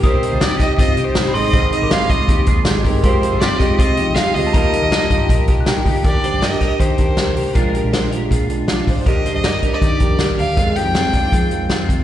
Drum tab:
HH |xxxxxxxo|xxxxxxxo|xxxxxxxo|xxxxxxxo|
SD |--oo--o-|--o---o-|--oo--o-|--o---o-|
BD |o--oo---|o--ooo-o|o--oo---|o--ooo-o|

HH |xxxxxxxo|xxxxxxxo|xxxxxxxo|xxxxxxxx|
SD |--oo--o-|--o---o-|--o---o-|--o---o-|
BD |o--ooo--|o---o--o|o--ooo--|o--oo--o|